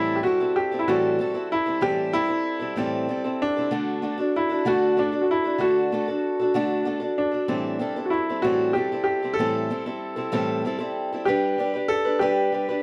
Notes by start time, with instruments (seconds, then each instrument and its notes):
Already playing: steel-string acoustic guitar A2 E3 G3 C4 E4 A4, grand piano E4
0.16 grand piano G4
0.23 steel-string acoustic guitar G3 C4 E4 A4, grand piano F#4
0.40 steel-string acoustic guitar G3 C4 E4 A4
0.56 grand piano G4
0.72 steel-string acoustic guitar G3 C4 E4 A4
0.79 grand piano E4
0.88 steel-string acoustic guitar A2 E3 G3 C4 E4 A4, grand piano F#4
1.19 steel-string acoustic guitar G3 C4 E4 A4
1.34 steel-string acoustic guitar G3 C4 E4 A4
1.52 grand piano E4
1.66 steel-string acoustic guitar G3 C4 E4 A4
1.81 steel-string acoustic guitar A2 E3 G3 C4 E4 A4, grand piano G4
2.12 steel-string acoustic guitar G3 C4 E4 A4, grand piano E4
2.28 steel-string acoustic guitar G3 C4 E4 A4
2.59 steel-string acoustic guitar G3 C4 E4 A4
2.76 steel-string acoustic guitar A2 E3 G3 C4 E4 A4, grand piano C4
3.09 steel-string acoustic guitar G3 C4 E4 A4
3.24 steel-string acoustic guitar G3 C4 E4 A4
3.42 grand piano D4
3.57 steel-string acoustic guitar G3 C4 E4 A4
3.71 steel-string acoustic guitar D3 A3 D4 F#4 A4
4.02 steel-string acoustic guitar A3 D4 F#4 A4
4.18 steel-string acoustic guitar D4 F#4 A4
4.36 grand piano E4
4.49 steel-string acoustic guitar D4 F#4 A4
4.65 steel-string acoustic guitar D3 A3 D4 F#4 A4, grand piano F#4
4.97 steel-string acoustic guitar A3 D4 F#4 A4, grand piano D4
5.12 steel-string acoustic guitar D4 F#4 A4
5.21 grand piano F#4
5.31 grand piano E4
5.44 steel-string acoustic guitar D4 F#4 A4
5.58 steel-string acoustic guitar D3 A3 D4 F#4 A4, grand piano F#4
5.92 steel-string acoustic guitar A3 D4 F#4 A4
6.08 steel-string acoustic guitar D4 F#4 A4
6.39 steel-string acoustic guitar D4 F#4 A4
6.54 steel-string acoustic guitar D3 A3 D4 F#4 A4
6.85 steel-string acoustic guitar A3 D4 F#4 A4
7.00 steel-string acoustic guitar D4 F#4 A4
7.18 grand piano D4
7.31 steel-string acoustic guitar D4 F#4 A4
7.48 steel-string acoustic guitar A2 E3 G3 C4 E4 A4
7.79 steel-string acoustic guitar G3 C4 E4 A4
7.96 steel-string acoustic guitar G3 C4 E4 A4
8.06 grand piano F#4
8.10 grand piano E4
8.29 steel-string acoustic guitar G3 C4 E4 A4
8.42 steel-string acoustic guitar A2 E3 G3 C4 E4 A4, grand piano F#4
8.73 steel-string acoustic guitar G3 C4 E4 A4, grand piano G4
8.92 steel-string acoustic guitar G3 C4 E4 A4
9.04 grand piano G4
9.22 steel-string acoustic guitar G3 C4 E4 A4
9.34 grand piano A4
9.39 steel-string acoustic guitar A2 E3 G3 C4 E4 A4
9.70 steel-string acoustic guitar G3 C4 E4 A4
9.86 steel-string acoustic guitar G3 C4 E4 A4
10.16 steel-string acoustic guitar G3 C4 E4 A4
10.32 steel-string acoustic guitar A2 E3 G3 C4 E4 A4
10.65 steel-string acoustic guitar G3 C4 E4 A4
10.78 steel-string acoustic guitar G3 C4 E4 A4
11.12 steel-string acoustic guitar G3 C4 E4 A4
11.25 steel-string acoustic guitar G3 D4 G4 B4, grand piano G4
11.58 steel-string acoustic guitar G3 D4 G4 B4
11.73 steel-string acoustic guitar D4 G4 B4
11.88 grand piano A4
12.05 steel-string acoustic guitar D4 G4 B4
12.19 steel-string acoustic guitar G3 D4 G4 B4, grand piano G4
12.52 steel-string acoustic guitar G3 D4 G4 B4
12.69 steel-string acoustic guitar D4 G4 B4